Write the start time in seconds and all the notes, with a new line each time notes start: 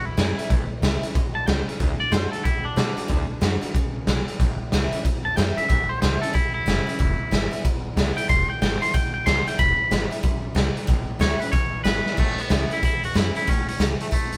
Already playing: E2
0.05 E2 E4
0.17 F#2 E3 A3 C#4 E4, snare, closed hi-hat
0.38 muted upright bass stroke, closed hi-hat
0.50 A1 A2, kick, closed hi-hat
0.70 muted upright bass stroke
0.82 C#2 E3 A3 C#4 E4, snare, closed hi-hat
1.03 C#4 E4, muted upright bass stroke, closed hi-hat
1.15 A1 B2, kick, closed hi-hat
1.35 E2 A5
1.46 C#2 C#3 G5, snare, closed hi-hat
1.67 E5, muted upright bass stroke, closed hi-hat
1.79 D2 D3 D#5, kick, closed hi-hat
2.00 D5, muted upright bass stroke
2.12 F#2 D3 A3 D4 F#4 C5, snare, closed hi-hat
2.32 A4, muted upright bass stroke, closed hi-hat
2.44 D2 A2 E4, kick, closed hi-hat
2.65 A2 D4
2.76 B2 D3 A3 D4 F#4, snare, closed hi-hat
2.97 D4 F#4, muted upright bass stroke, closed hi-hat
3.08 D2 D3, kick, closed hi-hat
3.30 muted upright bass stroke
3.41 F#2 D3 A3 D4 F#4, snare, closed hi-hat
3.61 D4 F#4, muted upright bass stroke, closed hi-hat
3.74 D2 C#3, kick, closed hi-hat
3.95 A2
4.07 B1 B2, snare, closed hi-hat
4.28 muted upright bass stroke, closed hi-hat
4.40 A1 A2, kick, closed hi-hat
4.60 muted upright bass stroke
4.72 C#2 E3 A3 C#4 E4, snare, closed hi-hat
4.92 C#4 E4, muted upright bass stroke, closed hi-hat
5.05 A1 E2, kick, closed hi-hat
5.25 E2 A5
5.36 F#2 E3 A3 C#4 E4 G5, snare, closed hi-hat
5.57 C#4 E4 E5, muted upright bass stroke, closed hi-hat
5.69 A1 A2 E5, kick, closed hi-hat
5.89 C5, muted upright bass stroke
6.01 C#2 E3 A3 C#4 E4 C5, snare, closed hi-hat
6.22 C#4 E4 A4, muted upright bass stroke, closed hi-hat
6.34 A1 E2 E4, kick, closed hi-hat
6.54 E2 E4
6.66 F#1 E3 A3 C#4 E4, snare, closed hi-hat
6.87 C#4 E4, muted upright bass stroke, closed hi-hat
6.99 E1 E2, kick, closed hi-hat
7.20 muted upright bass stroke
7.31 G#1 E3 G#3 B3 E4, snare, closed hi-hat
7.51 B3 E4, muted upright bass stroke, closed hi-hat
7.64 E1 B2, kick, closed hi-hat
7.84 B1
7.96 C#2 E3 G#3 B3 E4, snare, closed hi-hat
8.16 B3 E4 G5, muted upright bass stroke, closed hi-hat
8.29 E1 E2 C6, kick, closed hi-hat
8.49 G5, muted upright bass stroke
8.62 G#1 E3 G#3 B3 E4 G5, snare, closed hi-hat
8.82 B3 E4 C6, muted upright bass stroke, closed hi-hat
8.94 E1 B2 G5, kick, closed hi-hat
9.14 B1 G5
9.26 C#2 E3 G#3 B3 E4 C6, snare, closed hi-hat
9.47 B3 E4 G5, muted upright bass stroke, closed hi-hat
9.59 E1 E2 B5, kick, closed hi-hat
9.79 muted upright bass stroke
9.91 G#1 E3 G#3 B3 E4, snare, closed hi-hat
10.11 B3 E4, muted upright bass stroke, closed hi-hat
10.23 E1 F#2, kick, closed hi-hat
10.43 B1
10.55 C#2 G#2, snare, closed hi-hat
10.75 muted upright bass stroke, closed hi-hat
10.87 A1 A2, kick, closed hi-hat
11.08 muted upright bass stroke
11.19 D2 E3 A3 C#4 E4 C#5, snare, closed hi-hat
11.40 C#4 E4 B4, muted upright bass stroke, closed hi-hat
11.52 E1 E2 C#5, kick, closed hi-hat
11.73 B1
11.84 G#1 E3 G#3 B3 E4 B4, snare, closed hi-hat
12.06 muted upright bass stroke, snare
12.17 A1 A2 A3, kick, crash
12.38 B3, muted upright bass stroke, closed hi-hat
12.49 C#2 E3 A3 C#4 E4, snare, closed hi-hat
12.70 C#4 E4, muted upright bass stroke, closed hi-hat
12.83 A1 E2 E4, kick, closed hi-hat
13.03 E2 F#4, closed hi-hat
13.14 F#2 E3 A3 C#4 E4, snare, closed hi-hat
13.35 C#4 E4, muted upright bass stroke, closed hi-hat
13.47 A1 A2 C#4, kick, closed hi-hat
13.68 C#4, muted upright bass stroke, closed hi-hat
13.78 C#2 E3 A3 C#4 E4, snare, closed hi-hat
14.00 A3, muted upright bass stroke, closed hi-hat
14.11 A1 E2 A3, kick, closed hi-hat
14.32 E2, closed hi-hat